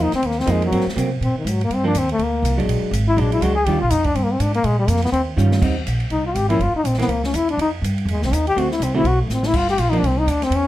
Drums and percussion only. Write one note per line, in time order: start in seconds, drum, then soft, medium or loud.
0.12 snare soft
0.12 ride soft
0.23 ride medium
0.31 snare soft
0.40 snare soft
0.47 hi-hat pedal medium
0.47 ride medium
0.62 ride soft
0.72 ride medium
0.81 snare soft
0.89 snare soft
0.98 hi-hat pedal soft
0.98 ride medium
1.22 ride medium
1.47 hi-hat pedal medium
1.47 ride medium
1.61 ride soft
1.71 ride medium
1.95 hi-hat pedal medium
1.95 ride medium
2.09 ride soft
2.19 ride medium
2.45 hi-hat pedal medium
2.45 ride medium
2.60 ride soft
2.69 ride medium
2.93 hi-hat pedal medium
2.93 ride medium
3.18 ride medium
3.32 ride soft
3.42 hi-hat pedal medium
3.42 ride medium
3.66 ride medium
3.90 hi-hat pedal medium
3.90 ride medium
4.04 kick medium
4.04 ride soft
4.15 ride medium
4.40 hi-hat pedal medium
4.40 ride medium
4.54 ride soft
4.64 ride medium
4.88 hi-hat pedal medium
4.88 ride medium
4.96 snare soft
5.02 snare soft
5.02 ride soft
5.13 ride medium
5.38 hi-hat pedal medium
5.52 snare medium
5.62 kick medium
5.62 crash medium
5.87 hi-hat pedal soft
5.87 ride medium
6.00 ride soft
6.10 ride medium
6.35 hi-hat pedal medium
6.35 ride medium
6.50 ride soft
6.61 ride medium
6.85 hi-hat pedal medium
6.85 ride medium
6.94 snare soft
6.99 snare soft
6.99 ride soft
7.09 ride medium
7.24 snare medium
7.34 hi-hat pedal medium
7.34 ride medium
7.49 ride soft
7.59 ride medium
7.84 hi-hat pedal soft
7.84 ride medium
7.98 ride soft
8.08 ride medium
8.22 snare soft
8.33 hi-hat pedal medium
8.33 ride medium
8.47 ride soft
8.58 ride medium
8.71 snare soft
8.82 hi-hat pedal medium
8.82 ride medium
9.05 ride medium
9.30 snare soft
9.30 hi-hat pedal medium
9.43 snare medium
9.54 kick medium
9.54 crash medium
9.68 snare soft
9.78 hi-hat pedal soft
9.78 ride medium
9.93 ride soft
10.04 ride medium
10.28 hi-hat pedal medium
10.28 ride medium
10.42 snare soft
10.42 ride soft
10.52 ride medium